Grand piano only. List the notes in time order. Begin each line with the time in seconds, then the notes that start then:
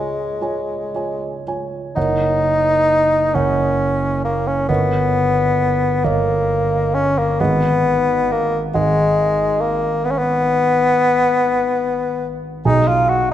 Already playing: C#2 F4 C#5 G#5
0.41 F4 C#5 G#5
0.94 F4 C#5 G#5
1.47 F4 C#5 G#5
1.96 F#1 A#4 C#5 F#5
3.35 F#1 A#4 C#5 F#5
4.69 G1 A#4 C#5 D#5
6.04 G1 A#4 C#5 D#5
7.40 G#1 G#4 D#5 F#5
8.74 G#1 G#4 D#5 F#5
12.65 B1 G#4 D#5 G#5